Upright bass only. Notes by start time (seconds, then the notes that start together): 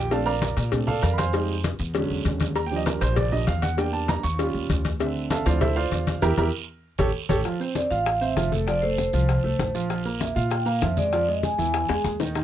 Already playing: A#1
0.57 A#2
1.03 F2
1.79 E2
2.10 E2
2.25 D#2
3.01 A#1
3.48 E2
4.24 D#2
4.54 D#2
4.70 D2
5.46 D2
5.92 E2
6.23 E2
6.38 E2
6.99 A1
7.30 A1
7.91 A1
8.37 F1
9.13 C2
9.44 C2
9.59 A#1
10.36 A#2
10.82 F2
11.59 E2
11.89 E2
12.05 D#2